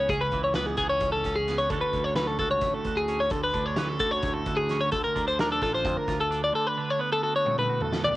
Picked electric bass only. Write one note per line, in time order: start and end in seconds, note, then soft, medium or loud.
0.09 0.31 C#2 medium
0.32 0.54 C#2 medium
0.55 0.77 C#2 medium
0.78 1.00 C#2 medium
1.01 1.23 C#2 medium
1.24 1.67 C#2 medium
1.70 1.81 D2 medium
1.93 2.36 D2 medium
2.39 2.62 C#2 medium
2.62 2.73 A1 medium
2.85 3.28 D2 medium
3.31 3.53 D2 medium
3.54 3.76 D2 medium
3.78 3.99 D2 medium
4.00 4.22 D2 medium
4.23 4.45 D2 medium
4.47 4.89 D2 loud
4.93 5.04 D2 loud
5.16 5.59 D2 medium
5.63 5.85 A1 medium
5.85 5.96 F2 medium
6.09 6.51 D2 medium